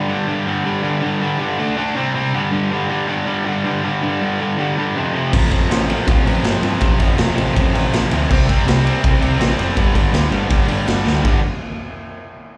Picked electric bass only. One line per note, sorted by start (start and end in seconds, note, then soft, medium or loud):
5.33 5.56 A1 loud
5.69 5.92 A1 medium
6.07 6.19 A1 loud
6.27 6.38 A1 medium
6.43 6.55 G1 loud
6.62 6.74 G2 loud
6.81 6.93 A1 loud
7.00 7.11 A1 medium
7.18 7.30 E1 loud
7.38 7.49 A1 loud
7.57 7.68 A1 medium
7.74 7.86 A1 medium
7.93 8.04 A1 loud
8.12 8.23 D2 medium
8.31 8.53 C2 loud
8.66 8.89 C2 loud
9.04 9.15 C2 loud
9.22 9.33 C2 loud
9.40 9.51 A1 loud
9.58 9.70 F1 medium
9.77 9.89 G1 loud
9.95 10.07 G1 loud
10.13 10.25 D2 medium
10.31 10.43 G1 loud
10.51 10.62 G1 medium
10.68 10.80 G1 medium
10.87 10.99 G1 loud
11.06 11.18 D2 medium
11.24 11.42 G1 loud